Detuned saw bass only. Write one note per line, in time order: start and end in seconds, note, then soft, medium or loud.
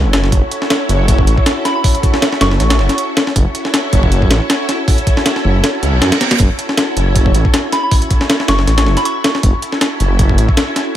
0.04 0.31 F#1 medium
0.32 0.41 F#1 loud
0.89 1.26 F#1 loud
1.27 1.36 A1 loud
2.41 2.58 F#1 loud
2.60 2.81 A1 loud
2.79 2.88 F#1 loud
3.36 3.45 F#1 loud
3.93 4.29 F#1 loud
4.31 4.40 A1 loud
5.45 5.62 F#1 loud
5.83 5.92 C#2 loud
5.93 6.01 B1 loud
6.02 6.11 F#2 medium
6.40 6.49 F#1 loud
6.97 7.33 F#1 loud
7.35 7.44 A1 loud
8.49 8.66 F#1 loud
8.67 8.88 A1 loud
8.86 8.96 F#1 loud
9.43 9.53 F#1 loud
10.00 10.37 F#1 loud
10.38 10.48 A1 loud